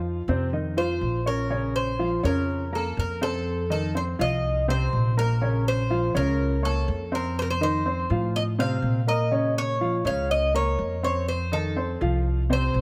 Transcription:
Already playing: upright bass F2, grand piano F3 F4 F5
0.28 upright bass F2, grand piano C3 C4 C5
0.53 grand piano D#3 D#4 D#5
0.77 grand piano F3 F4 F5, cuban tres C5
1.01 upright bass A#1
1.26 grand piano C#4 C#5 C#6, cuban tres A#4
1.50 grand piano C#3 C#4 C#5
1.76 cuban tres C5
1.99 grand piano F3 F4 F5
2.23 upright bass F2, grand piano C#3 C#4 C#5, cuban tres A#4
2.72 grand piano A#3 A#4 A#5, cuban tres A4
2.97 upright bass F2, cuban tres A#4
3.21 grand piano C4 C5 C6, cuban tres A4
3.70 grand piano D#3 D#4 D#5, cuban tres A4
3.95 grand piano C4 C5 C6, cuban tres C5
4.19 upright bass C2, grand piano F3 F4 F5, cuban tres D#5
4.68 grand piano C3 C4 C5, cuban tres C5
4.93 upright bass A#1
5.17 grand piano A#3 A#4 A#5, cuban tres A#4
5.41 grand piano C#3 C#4 C#5
5.68 cuban tres C5
5.90 grand piano F3 F4 F5
6.14 upright bass C#2, grand piano C#3 C#4 C#5, cuban tres A#4
6.62 grand piano A#3 C#5 C#6, cuban tres A4
6.88 upright bass F2
7.12 grand piano C4 C5 C6, cuban tres A#4
7.39 cuban tres A#4 C5
7.50 cuban tres C5
7.61 grand piano D#3 D#4 D#5, cuban tres C5
7.85 grand piano C4 C5 C6
8.10 upright bass A2, grand piano F3 F4 F5
8.36 cuban tres D#5
8.58 grand piano C3 C4 C5, cuban tres F5
8.82 upright bass A#2
9.07 grand piano A#3 A#4 A#5, cuban tres D#5
9.31 grand piano C#3 C#4 C#5
9.58 cuban tres C#5
9.81 grand piano F3 F4 F5
10.05 upright bass C#2, grand piano C#3 C#4 C#5, cuban tres F5
10.31 cuban tres D#5
10.54 grand piano A#3 A#4 A#5, cuban tres C#5
10.78 upright bass F2
11.03 grand piano C4 C5 C6, cuban tres C#5
11.28 cuban tres C5
11.52 grand piano D#3 D#4 D#5, cuban tres A4
11.76 grand piano C4 C5 C6
12.01 upright bass C2, grand piano F3 F4 F5
12.50 grand piano C3 C4 C5, cuban tres C5
12.74 upright bass A#1

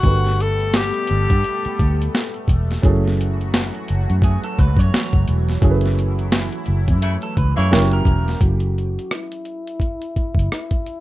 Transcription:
Already playing: analog synth pad A3, tenor saxophone F#4
0.03 fingered electric bass G1, analog synth pad G3 B3 A4, grand piano G3 D4 A4 B4 F#5, kick, closed hi-hat
0.27 snare
0.40 tenor saxophone A4, closed hi-hat
0.60 closed hi-hat
0.74 tenor saxophone G4, snare, closed hi-hat
0.94 closed hi-hat
1.07 fingered electric bass G1, closed hi-hat
1.30 fingered electric bass G2, kick, closed hi-hat
1.44 closed hi-hat
1.65 muted fingered electric bass stroke, closed hi-hat
1.79 fingered electric bass D2, kick, closed hi-hat
2.02 closed hi-hat
2.15 snare, closed hi-hat
2.34 closed hi-hat
2.48 fingered electric bass E1, kick, closed hi-hat
2.71 snare, closed hi-hat
2.82 fingered electric bass F#1, analog synth pad E3 F#3 F#4, grand piano F#3 C#4 E4 G#4 A4, kick, closed hi-hat
3.07 snare
3.21 closed hi-hat
3.41 closed hi-hat
3.54 snare, closed hi-hat
3.75 closed hi-hat
3.88 fingered electric bass F#1, closed hi-hat
4.10 fingered electric bass F#2, closed hi-hat
4.22 clean electric guitar G#4, kick, closed hi-hat
4.44 clean electric guitar A4, closed hi-hat
4.59 fingered electric bass C#2, clean electric guitar B4, kick, closed hi-hat
4.77 fingered electric bass F#2, clean electric guitar C#5, kick, closed hi-hat
4.94 snare, closed hi-hat
5.13 fingered electric bass F#1, kick, closed hi-hat
5.28 fingered electric bass E1, closed hi-hat
5.49 snare, closed hi-hat
5.61 fingered electric bass F#1, grand piano F#3 C#4 E4 G#4 A4, analog synth pad E4, kick, closed hi-hat
5.71 grand piano B4
5.81 closed hi-hat
5.85 snare
5.99 closed hi-hat
6.19 closed hi-hat
6.32 snare, closed hi-hat
6.52 closed hi-hat
6.66 fingered electric bass F#1, closed hi-hat
6.88 fingered electric bass F#2, kick, closed hi-hat
7.01 saxophone section C#3 A3 E4, closed hi-hat
7.22 clean electric guitar A4, closed hi-hat
7.37 fingered electric bass C#2, clean electric guitar B4, kick, closed hi-hat
7.56 fingered electric bass F#2, saxophone section C#3 A#3 E4, clean electric guitar C#5, closed hi-hat
7.70 fingered electric bass F#1, analog synth pad E3 F#3 A#3 G4, grand piano F#3 C#4 E4 G4 A#4, snare
7.75 closed hi-hat
7.91 clean electric guitar A#4, closed hi-hat
8.05 fingered electric bass E1, kick, closed hi-hat
8.28 snare, closed hi-hat
8.40 fingered electric bass F#1, grand piano F#3 C#4 E4 G#4 A4, tenor saxophone F#4, kick, closed hi-hat
8.60 closed hi-hat
8.78 closed hi-hat
8.99 closed hi-hat
9.11 tenor saxophone E4, cross-stick, closed hi-hat
9.32 closed hi-hat
9.45 closed hi-hat
9.67 closed hi-hat
9.80 kick, closed hi-hat
10.02 closed hi-hat
10.16 muted fingered electric bass stroke, kick, closed hi-hat
10.35 fingered electric bass F#1, kick
10.39 closed hi-hat
10.52 tenor saxophone E4, cross-stick, closed hi-hat
10.71 kick, closed hi-hat
10.86 closed hi-hat

